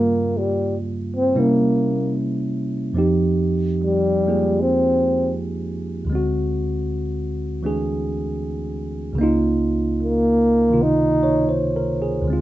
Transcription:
Already playing: G2 C#3 G3 A#3 F4
0.38 G3
1.16 C4
1.35 C3 G3 A#3 C#4 E4
1.39 A#3
2.93 F2 F3 C4 D#4
2.98 G4
3.83 G3
4.27 G#3 A#3 F4 G#4
4.61 C4
6.05 D2 D3
6.10 G#3 C4
6.15 F#4
7.63 E3 A3 D4 G#4
9.13 C#2 C#3
9.18 A#3 D#4
9.23 F4
10.03 A#3
10.70 C3 D#3 F4
10.82 D#4
11.23 C#5
11.49 C5
11.76 A#4
12.02 G#4
12.21 D2 D3
12.28 G#3 C4
12.33 F4

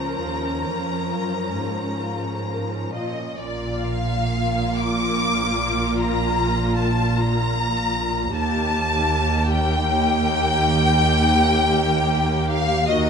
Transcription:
Already playing: C#2 F3 C#4 A#4 A#5
0.19 D#2 F4
0.42 C#4
0.65 F2 A#3
0.89 C#4
1.12 F#2 F4
1.35 C#4
1.57 G#2 A#3
1.80 C#4
2.02 F4
2.24 C#4
2.48 A#3
2.70 C#4
2.94 A#2 F4 D#5
3.18 C#4
3.38 A#1 A#2 A#3 F4 D5
3.84 F5
4.77 D6
5.98 A#5
6.77 A5
7.17 A#5
8.35 D#2 A#3 G4 A5
9.47 G5
12.50 F5
12.89 D#2 A#3 F#4 D#5

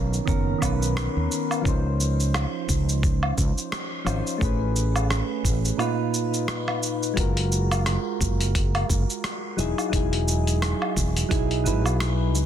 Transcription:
Already playing: B1 D#3 B3 C#4 A#4
0.13 shaker
0.25 F#1 D#3 B3 C#4 A#4, kick, shaker
0.58 B1 D#3 B3, kick, low woodblock
0.62 C#4 B4, shaker
0.82 shaker
0.97 cross-stick, shaker
1.17 D#2
1.32 shaker
1.51 low woodblock, shaker
1.61 C#2 F3 C#4, kick
1.66 D#4 C5, shaker
2.00 shaker
2.20 shaker
2.34 cross-stick, low woodblock, shaker
2.69 C#2, kick, shaker
2.89 shaker
3.03 kick, shaker
3.23 low woodblock
3.38 C#2, kick, shaker
3.58 shaker
3.72 cross-stick, shaker
4.05 G#1 F3 C#4 D#4 C5, low woodblock, shaker
4.27 shaker
4.38 A1 A3 C#4, kick, shaker
4.42 G#4 B4
4.76 shaker
4.96 low woodblock, shaker
5.10 cross-stick, shaker
5.44 A1, kick, shaker
5.65 shaker
5.77 A#2 D#4 F4 B4, low woodblock, shaker
6.14 shaker
6.34 shaker
6.48 cross-stick, shaker
6.68 cross-stick, low woodblock
6.83 shaker
7.03 shaker
7.14 F#1 G#3 F4, kick, closed hi-hat
7.18 F#4 A#4, shaker
7.37 closed hi-hat
7.52 shaker
7.71 closed hi-hat, low woodblock, shaker
7.86 cross-stick, closed hi-hat, shaker
8.21 F#1, kick, shaker
8.41 closed hi-hat, shaker
8.55 kick, closed hi-hat, shaker
8.75 closed hi-hat, low woodblock
8.89 F#1, kick, shaker
9.10 shaker
9.24 cross-stick, closed hi-hat, shaker
9.57 E1 F#3 D#4 E4 G#4, shaker
9.78 low woodblock, shaker
9.89 E1 F#3 D#4, kick, closed hi-hat
9.94 E4 G#4, shaker
10.13 closed hi-hat
10.28 shaker
10.47 closed hi-hat, shaker
10.62 cross-stick, closed hi-hat, shaker
10.82 low woodblock
10.97 E1, kick, shaker
11.17 closed hi-hat, shaker
11.29 B1 F#3 D#4 E4 G#4, kick, closed hi-hat, shaker
11.51 closed hi-hat
11.64 G#1 F#3 D#4 E4 B4, shaker
11.85 B1, low woodblock, shaker
12.00 cross-stick, closed hi-hat, shaker
12.35 C#2, shaker

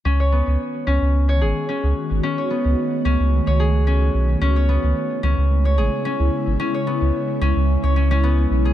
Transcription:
0.05 C#2 D#3 G#3 B3 C#4 F#4
0.20 C#5
0.32 B3
0.47 C#2
0.87 C#2 C#4
1.02 C#2
1.29 C#5
1.41 G#1 G#4
1.69 C#4
1.84 C#2
2.11 G#1
2.23 A3 C#4
2.38 C#5
2.50 B3
2.65 C#2
3.05 C#2 C#4
3.20 C#2
3.47 C#2 C#5
3.60 G#4
3.87 C#4
4.14 B1
4.41 C#2 C#3 G#3 C#4 E4
4.56 C#5
4.69 B3
4.84 C#2
5.23 C#2 C#4
5.38 C#2
5.65 C#5
5.78 G#1 G#4
6.05 C#4
6.20 C#2
6.47 G#1
6.60 C#4
6.74 C#5
6.87 B3
7.02 C#2
7.41 C#2 C#4
7.56 C#2
7.84 C#2 C#5
7.96 C#4
8.11 C#4
8.23 B3
8.51 B1
8.65 G#4

